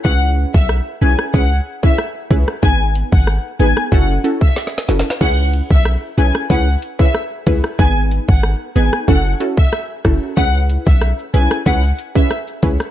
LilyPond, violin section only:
\new Staff \with { instrumentName = "Violin section" } { \time 4/4 \key cis \minor \tempo 4 = 93 fis''16 r8 e''16 r8 gis''16 r16 fis''16 r8 e''16 r4 | gis''16 r8 fis''16 r8 gis''16 r16 fis''16 r8 e''16 r4 | fis''16 r8 e''16 r8 gis''16 r16 fis''16 r8 e''16 r4 | gis''16 r8 fis''16 r8 gis''16 r16 fis''16 r8 e''16 r4 |
fis''16 r8 e''16 r8 gis''16 r16 fis''16 r8 e''16 r4 | }